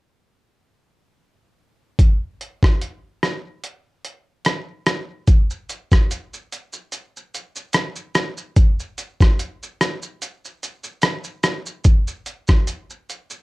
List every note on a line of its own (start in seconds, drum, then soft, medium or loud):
1.99 kick loud
1.99 closed hi-hat medium
2.41 closed hi-hat soft
2.63 kick medium
2.63 cross-stick medium
2.81 closed hi-hat medium
3.23 cross-stick medium
3.23 closed hi-hat medium
3.64 closed hi-hat medium
4.05 closed hi-hat medium
4.45 cross-stick medium
4.45 closed hi-hat medium
4.86 cross-stick medium
4.86 closed hi-hat soft
5.28 kick loud
5.28 closed hi-hat medium
5.28 shaker medium
5.50 shaker medium
5.70 closed hi-hat soft
5.70 shaker medium
5.92 kick medium
5.92 cross-stick medium
5.92 shaker medium
6.11 closed hi-hat medium
6.11 shaker medium
6.34 shaker soft
6.52 closed hi-hat medium
6.52 shaker medium
6.73 shaker medium
6.92 closed hi-hat medium
6.92 shaker medium
7.17 shaker soft
7.34 closed hi-hat soft
7.34 shaker medium
7.56 shaker soft
7.73 cross-stick medium
7.73 closed hi-hat medium
7.73 shaker medium
7.96 shaker soft
8.15 cross-stick medium
8.15 closed hi-hat soft
8.15 shaker soft
8.37 shaker medium
8.56 kick loud
8.56 closed hi-hat medium
8.56 shaker medium
8.80 shaker medium
8.98 closed hi-hat medium
8.98 shaker medium
9.21 kick medium
9.21 cross-stick medium
9.21 shaker medium
9.39 closed hi-hat medium
9.39 shaker medium
9.63 shaker soft
9.81 cross-stick medium
9.81 closed hi-hat medium
9.81 shaker medium
10.02 shaker medium
10.22 closed hi-hat medium
10.22 shaker medium
10.45 shaker soft
10.63 closed hi-hat soft
10.63 shaker medium
10.84 shaker soft
11.02 cross-stick medium
11.02 closed hi-hat medium
11.02 shaker medium
11.24 shaker medium
11.43 cross-stick medium
11.43 closed hi-hat soft
11.43 shaker soft
11.66 shaker medium
11.84 kick loud
11.84 closed hi-hat medium
11.84 shaker medium
12.07 shaker medium
12.26 closed hi-hat medium
12.26 shaker soft
12.48 kick medium
12.48 cross-stick medium
12.48 shaker medium
12.67 closed hi-hat medium
12.67 shaker medium
12.90 shaker soft
13.10 closed hi-hat soft
13.10 shaker medium
13.30 shaker medium